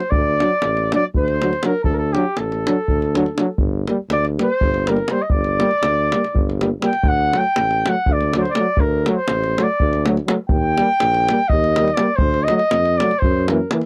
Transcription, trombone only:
0.43 F#3
0.95 F#3
1.43 F#3
1.64 F#3
2.16 F#3
2.68 F#3
3.17 F#3
3.40 F#3
3.89 G3
4.39 G3
4.90 G3
5.12 G3
5.61 G3
6.13 G3
6.60 G3
6.81 G3
7.34 F#3
7.86 F#3
8.37 F#3
8.59 F#3
9.08 F#3
9.58 F#3
10.07 F#3
10.27 F#3
10.78 G3
11.30 G3
11.81 G3
11.98 G3
12.50 F#3
13.01 F#3
13.50 E3
13.72 E3

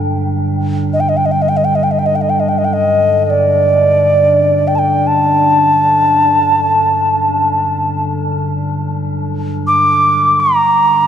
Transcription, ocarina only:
0.93 D#5
1.00 G5
1.09 D#5
1.17 G5
1.26 D#5
1.32 G5
1.42 D#5
1.49 G5
1.57 D#5
1.65 G5
1.75 D#5
1.83 G5
1.91 D#5
1.99 G5
2.06 D#5
2.16 G5
2.21 D#5
2.30 G5
2.40 D#5
2.49 G5
2.58 D#5
2.65 G5
2.73 D#5
3.25 D#5
3.30 D5
4.68 G5
4.75 G5 A5
5.07 A5
9.67 D6
10.40 A#5

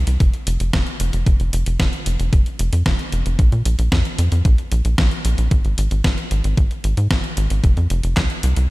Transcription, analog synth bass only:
0.07 C2
0.20 F1
0.47 F1
0.60 F1
0.73 F1
1.00 F1
1.13 F1
1.26 F1
1.40 F1
1.53 F1
1.67 F1
1.80 F1
2.06 F1
2.20 F1
2.33 F1
2.59 F1
2.73 F2
2.86 F1
3.12 F1
3.26 F1
3.39 A#1
3.52 A#2
3.65 A#1
3.79 A#1
3.92 F2
4.19 F2
4.32 F2
4.45 A#1
4.72 A#1
4.85 A#1
4.98 A#1
5.25 A#1
5.38 A#1
5.51 G#1
5.65 G#1
5.78 G#1
5.91 G#1
6.04 G#1
6.31 G#1
6.44 G#1
6.57 G#1
6.84 G#1
6.97 G#2
7.11 G#1
7.37 G#1
7.51 G#1
7.64 F1
7.77 F2
7.90 F1
8.04 F1
8.17 C2
8.43 C2
8.57 C2

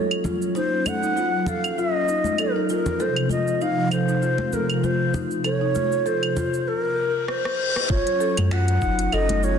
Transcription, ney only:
Already playing: C#5
0.56 C5
0.87 F#5
1.48 F5
1.79 D#5
2.40 A#4
2.71 A#4
3.01 C5
3.31 D#5
3.61 F5
3.92 C5
4.53 A#4
4.84 C5
5.45 C#5
6.06 C5
6.67 A#4
7.28 C5
7.90 C#5
8.52 F#5
9.13 D#5
9.44 C#5

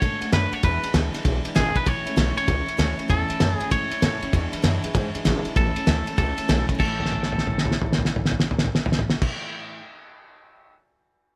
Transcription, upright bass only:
0.02 G#2
0.21 muted upright bass stroke
0.32 F#2
0.52 muted upright bass stroke
0.64 E2
0.83 muted upright bass stroke
0.94 D2
1.14 muted upright bass stroke
1.25 B1
1.45 muted upright bass stroke
1.56 G#1
1.76 muted upright bass stroke
1.87 A1
2.06 muted upright bass stroke
2.17 B1
2.37 muted upright bass stroke
2.48 C#2
2.67 muted upright bass stroke
2.78 D2
2.98 muted upright bass stroke
3.10 E2
3.30 muted upright bass stroke
3.41 F#2
3.60 muted upright bass stroke
3.72 G#2
3.91 muted upright bass stroke
4.03 A2
4.22 muted upright bass stroke
4.33 E2
4.53 muted upright bass stroke
4.64 F#2
4.84 muted upright bass stroke
4.95 G#2
5.15 muted upright bass stroke
5.25 G#1
5.45 muted upright bass stroke
5.56 A1
5.76 muted upright bass stroke
5.87 D2
6.18 C#2
6.38 muted upright bass stroke
6.49 B1
6.69 muted upright bass stroke
6.80 A1

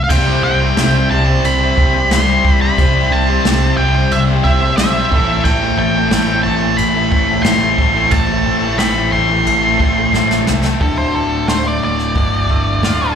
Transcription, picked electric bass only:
0.10 C2
0.44 C2
0.77 C2
1.11 C2
1.44 C2
1.78 C2
2.11 C2
2.45 C2
2.78 C2
3.12 C2
3.45 C2
3.79 C2
4.12 C2
4.45 C2
4.79 B1
5.12 A1
5.45 A1
5.78 A1
6.12 A1
6.46 A1
6.79 A1
7.12 A1
7.45 A1
7.78 A1
8.12 A1
8.47 A1
8.80 A1
9.13 A1
9.47 A1
9.80 A1
10.13 A1
10.46 C2
10.81 D1
11.14 D1
11.48 D1
11.82 D1
12.16 G1
12.83 D1

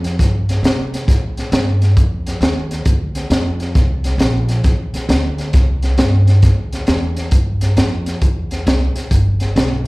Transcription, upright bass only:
Already playing: F2
0.19 G2
0.63 C3
1.08 A2
1.52 G2
1.97 F2
2.41 D#2
2.86 D2
3.30 F2
3.75 C2
4.18 A#1
4.65 A1
4.93 muted upright bass stroke
5.09 D2
5.54 C2
5.98 G2
6.43 D2
6.88 E2
7.32 G2
7.77 F2
8.22 E2
8.67 C2
8.95 muted upright bass stroke
9.12 G1
9.56 B1

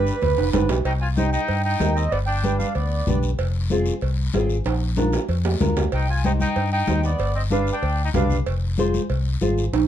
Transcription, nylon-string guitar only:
Already playing: D4 G4 B4
0.54 D4 G4 B4
1.17 D#4 G4 C5
1.80 D#4 G4 A#4
2.43 D4 G4 B4
3.07 D4 G4 B4
3.71 C4 F4 G#4
4.34 C4 F4 G#4
4.97 D4 F4 A#4
5.60 D4 F4 A#4
6.24 D#4 G4 C5
6.88 D#4 G4 C5
7.51 D4 G4 B4
8.14 D4 G4 B4
8.78 F4 G#4 C5
9.41 F4 G#4 C5

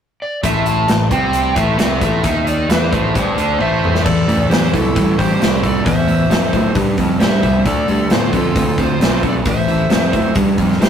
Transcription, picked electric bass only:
0.44 A1
0.88 A1
1.11 C2
1.56 A1
1.80 C2
2.02 A1
2.24 D#2
2.69 E2
2.93 A1
3.16 G1
3.37 D2
3.61 A1
4.06 A1
4.28 D2
4.50 E2
4.74 C2
4.96 A1
5.41 C2
5.86 E2
6.30 F2
6.53 A2
6.75 G2
6.98 F2
7.22 G2
7.44 C2
7.66 D2
7.89 G2
8.12 A2
8.33 F2
8.56 D2
9.00 B1
9.46 A1
9.90 F2
10.13 A2
10.36 G2
10.58 F2
10.80 G2

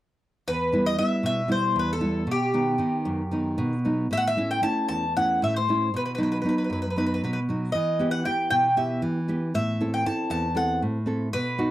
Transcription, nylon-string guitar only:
0.47 E2
0.72 G3 B3 E4
0.99 G3 B3 E4
1.23 B2
1.48 G3 B3 E4
1.76 E2
2.00 G3 B3 E4
2.27 B2
2.54 D#3 B3 D#4
2.78 D#3 B3 D#4
3.05 F#2
3.31 D#3 B3 D#4
3.58 B2
3.85 F#3 B3 D#4
4.11 A2
4.37 A3 C#4 E4
4.62 A3 C#4 E4
4.88 E2
5.17 A3 C#4 E4
5.42 A2
5.68 A3 C#4 E4
5.94 B2
6.18 F#3 B3 D#4
6.43 F#3 B3 D#4
6.70 F#2
6.96 F#3 B3 D#4
7.24 B2
7.49 F#3 B3 D#4
7.75 E3
7.99 B3 E4 G4
8.26 B3 E4 G4
8.51 B2
8.76 B3 E4 G4
9.02 E3
9.28 B3 E4 G4
9.54 A2
9.80 C4 E4 A4
10.05 C4 E4 A4
10.30 E2
10.55 C4 E4 A4
10.82 A2
11.06 C4 E4 A4
11.34 B2
11.58 B3 D#4 F#4

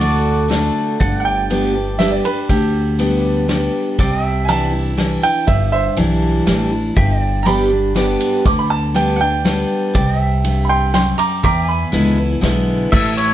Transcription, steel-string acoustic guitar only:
0.00 D3 A3 D4 F#4
0.49 D3 A3 D4 F#4
1.00 G2
1.50 G3 B3 D4 G4
1.74 D4 G4
1.99 G3 B3 D4 G4
2.24 D4 G4
2.50 D3
2.99 G3 B3 D4 G4
3.48 G3 B3 D4 G4
3.99 C3
4.48 E3 G3 D4 E4
4.72 D4 E4
4.97 E3 G3 D4 E4
5.22 D4 E4
5.47 G2
5.97 E3 G3 D4 E4
6.46 E3 G3 D4 E4
6.71 D4 E4
6.96 G2
7.45 G3 B3 D4 G4
7.70 D4 G4
7.95 G3 B3 D4 G4
8.46 D3
8.94 G3 B3 D4 G4
9.20 D4 G4
9.45 G3 B3 D4 G4
10.45 G2
10.94 F#2
11.44 E2
11.92 D3 G#3 B3 E4
12.17 B3 E4
12.41 D3 G#3 B3 E4
12.92 A2

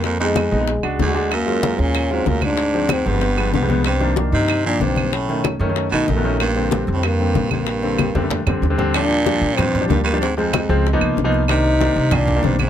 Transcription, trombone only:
0.05 A#3
0.20 G#3
1.02 G#3
1.34 A#3
1.80 C#4
2.13 C4
2.28 A#3
2.45 D4
2.93 C4
3.08 B3
3.54 B3
3.86 C4
4.32 D#4
4.66 D4
4.83 C4
5.13 C#4
5.93 D#4
6.10 A3
6.40 A#3
6.95 C4
7.05 A#3
7.53 A#3
8.94 D4
9.56 C4
9.89 A#3
10.05 A#3
10.21 C4
10.37 G#3
11.50 D#4
12.14 D4
12.45 C4
12.61 C4

